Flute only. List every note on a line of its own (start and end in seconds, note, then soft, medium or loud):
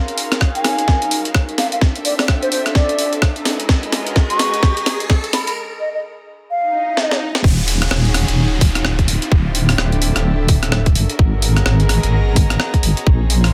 0.55 1.20 G#5 medium
1.58 1.67 F5 medium
1.72 1.78 F5 medium
2.05 2.14 D5 medium
2.19 2.25 D5 medium
2.42 2.48 C5 medium
2.52 2.61 C5 medium
2.75 3.13 D5 medium
4.30 4.95 C#6 medium
5.33 5.42 B5 medium
5.47 5.53 B5 medium
5.80 5.89 D#5 medium
5.94 6.00 D#5 medium
6.51 7.17 F5 medium